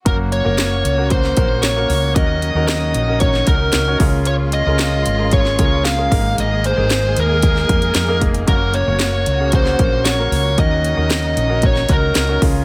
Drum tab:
HH |x-x-x-x-x-x-x-o-|x-x-x-x-x-x-x-o-|x-x-x-x-x-x-x-o-|x-x-x-x-x-xxx-xx|
SD |----o----o--o---|----o----o--o---|----o----o--o---|----o----o--o---|
BD |o-------o-o-----|o-------o-o---o-|--------o-o---o-|--------o-o---o-|

HH |x-x-x-x-x-x-x-o-|x-x-x-x-x-x-x-o-|
SD |----o----o--o---|----o----o--o---|
BD |o-------o-o-----|o-------o-o---o-|